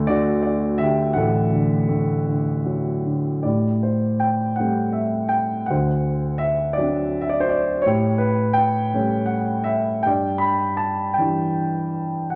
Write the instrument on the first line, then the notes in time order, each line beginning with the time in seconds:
grand piano
Already playing: D2 D3 A3
0.07 D3 F#4 D5
0.42 F#4 D5
0.78 D3 E5
0.82 G4
1.13 A1 F#5
1.18 A4
1.52 D3
1.89 A3
2.26 D3
2.65 F#3
3.05 D3
3.43 A2 G4 D5
3.83 C5
4.20 G5
4.56 G3 A3 C4 F#5
4.92 E5
5.29 G5
5.66 D2 F#5
5.70 C5
6.38 E5
6.73 D5
6.78 F#3 C4 D4
7.21 E5
7.29 D5
7.40 C5
7.49 D5
7.82 C#5
7.86 A2 G4
8.18 B4
8.53 G5
8.93 G3 A3 C#4
9.26 F#5
9.64 E5
10.03 G2 G5
10.07 D5
10.38 B5
10.77 A5
11.14 G5
11.18 E3 G3 D4
12.30 F#5